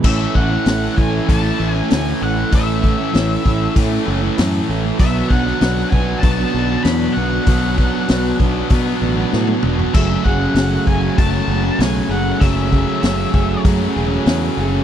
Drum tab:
CC |x---------------|----------------|----------------|----------------|
HH |----o---o---o---|o---o---o---o---|o---o---o---o---|o---o---o-------|
SD |----o-------o---|----o-------o---|---oo-------o---|----o-------o---|
T1 |----------------|----------------|----------------|-------------o--|
T2 |----------------|----------------|----------------|--------------o-|
FT |----------------|----------------|----------------|---------------o|
BD |o-o---o-o-------|o-o---o-o-------|o-o---o-o-------|o-o---o-o-------|

CC |x---------------|----------------|
HH |----o---o---o---|o---o---o---o---|
SD |----o-------o---|----o-------o---|
T1 |----------------|----------------|
T2 |----------------|----------------|
FT |----------------|----------------|
BD |o-o---o-o-------|o-o---o-o-------|